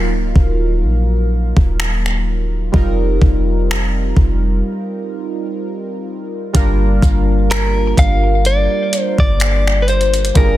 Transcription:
Already playing: 808-style bass D#1, synth keys F#3 A#3 D#4 F4 A#4 F5
0.14 808-style bass D1
0.36 808-style bass D#1, kick
0.83 808-style bass A#1
1.57 808-style bass D#1, kick
1.80 finger snap
2.06 finger snap
2.72 808-style bass F1, synth keys G3 C4 D#4 F4 A#4, kick
3.22 808-style bass F1, kick
3.71 finger snap
4.17 808-style bass F1, kick
6.53 808-style bass G1, synth keys G3 A#3 D4 F4 A#4, kick, closed hi-hat
7.02 808-style bass G1, synth pluck F5, kick, closed hi-hat
7.51 clean electric guitar A#4, finger snap, closed hi-hat
7.97 808-style bass G1, clean electric guitar F5, kick, closed hi-hat
8.45 clean electric guitar D5, closed hi-hat
8.93 closed hi-hat
9.02 clean electric guitar C5
9.18 808-style bass G1, clean electric guitar D5, kick
9.40 finger snap, closed hi-hat
9.67 finger snap
9.82 clean electric guitar B4
9.88 synth pluck C5, clean electric guitar C5, closed hi-hat
10.01 closed hi-hat
10.14 closed hi-hat
10.25 closed hi-hat
10.34 808-style bass G1, synth keys G3 A#3 D4 F4 G#4, clean electric guitar A#4, kick, closed hi-hat
10.44 synth keys A#4

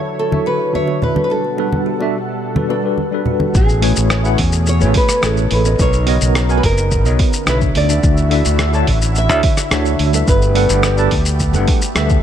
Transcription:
Already playing: analog synth pad D3 F#3 E4 C#5
0.19 nylon-string guitar A4
0.31 tine electric piano D3 D4 F#4 C#5 E5, high conga
0.46 kalimba F#4, nylon-string guitar B4
0.72 tine electric piano D3 D4 F#4 C#5 E5, nylon-string guitar C#5, high conga
0.88 high bongo
1.02 nylon-string guitar B4, kalimba D5, low conga
1.15 tine electric piano G3 D4 F#4 A4 B4, high conga
1.24 nylon-string guitar B4
1.30 analog synth pad B2 G3 A4 F#5, kalimba F#4, nylon-string guitar A4
1.44 high bongo
1.57 tine electric piano G3 D4 F#4 A4 B4, high bongo
1.73 high conga
1.86 kalimba G4
1.99 tine electric piano G3 D4 F#4 A4 E5, high bongo
2.55 tine electric piano G3 D4 F#4 A4 B4, high conga
2.69 tine electric piano G3 D4 F#4 A4 D5, kalimba B4, high bongo
2.83 tine electric piano G3 D4 F#4 A4 B4
2.98 high conga
3.12 tine electric piano G3 D4 F#4 A4 B4
3.26 kalimba F#4, low conga
3.40 high conga
3.55 fingered electric bass A1, analog synth pad B2 A3 C#4 G#4, nylon-string guitar G#4, kick, shaker
3.69 shaker
3.81 tine electric piano A3 E4 G#4 B4 C#5, open hi-hat
3.96 fingered electric bass A1, shaker
4.10 cross-stick, shaker
4.23 tine electric piano A3 E4 G#4 B4 F#5, shaker
4.38 fingered electric bass E2, kick, open hi-hat
4.52 shaker
4.67 nylon-string guitar C#5, shaker
4.79 fingered electric bass A1, tine electric piano A3 E4 G#4 B4 C#5, shaker
4.94 nylon-string guitar B4, kick, open hi-hat
5.09 cross-stick, shaker
5.21 fingered electric bass A1, tine electric piano A3 E4 G#4 B4 C#5, nylon-string guitar A4, cross-stick, shaker
5.37 shaker
5.51 fingered electric bass A1, nylon-string guitar B4, open hi-hat
5.64 tine electric piano B3 F#4 A#4 C#5 D#5, shaker
5.78 fingered electric bass B1, analog synth pad C#3 B3 D#4 A#4, nylon-string guitar C#5, kick, shaker
5.93 shaker
6.06 tine electric piano B3 F#4 A#4 C#5 D#5, open hi-hat
6.21 fingered electric bass B1, shaker
6.35 cross-stick, shaker
6.48 tine electric piano B3 F#4 A#4 C#5 G#5, shaker
6.58 nylon-string guitar B4
6.63 fingered electric bass F#1, nylon-string guitar A#4, kick, open hi-hat
6.78 shaker
6.91 kick, shaker
7.04 fingered electric bass B1, tine electric piano B3 F#4 A#4 C#5 D#5, shaker
7.19 kick, open hi-hat
7.33 shaker
7.46 fingered electric bass B1, tine electric piano D3 D4 F#4 C#5 E5, cross-stick, shaker
7.50 nylon-string guitar B4
7.61 kick, shaker
7.75 fingered electric bass D2, analog synth pad D3 E4 F#4 E5, nylon-string guitar D5, open hi-hat
7.88 tine electric piano D3 D4 F#4 D5 E5, shaker
8.03 fingered electric bass D2, kick, shaker
8.17 shaker
8.30 tine electric piano D3 D4 F#4 D5 E5, open hi-hat
8.45 fingered electric bass D2, shaker
8.59 cross-stick, shaker
8.73 tine electric piano D3 D4 F#4 C#5 A5, shaker
8.87 fingered electric bass A1, kick, open hi-hat
9.02 shaker
9.15 nylon-string guitar E5, shaker
9.28 fingered electric bass D2, tine electric piano D3 D4 F#4 C#5 E5, shaker
9.43 kick, open hi-hat
9.57 cross-stick, shaker
9.71 fingered electric bass D2, tine electric piano D3 D4 F#4 C#5 E5, cross-stick, shaker
9.86 shaker
9.99 fingered electric bass D2, open hi-hat
10.13 tine electric piano G3 D4 A4 B4 E5, shaker
10.27 fingered electric bass G1, analog synth pad A3 B3 G4, nylon-string guitar B4, kick, shaker
10.42 shaker
10.54 tine electric piano G3 D4 A4 B4 F#5, open hi-hat
10.70 fingered electric bass G1, shaker
10.83 cross-stick, shaker
10.96 tine electric piano G3 D4 A4 B4 A5, shaker
11.11 fingered electric bass D2, kick, open hi-hat
11.26 shaker
11.40 kick, shaker
11.53 fingered electric bass G1, tine electric piano G3 D4 A4 B4 F#5, shaker
11.68 kick, open hi-hat
11.82 shaker
11.95 fingered electric bass D2, tine electric piano G3 D4 A4 B4 E5, cross-stick, shaker
12.09 kick, shaker

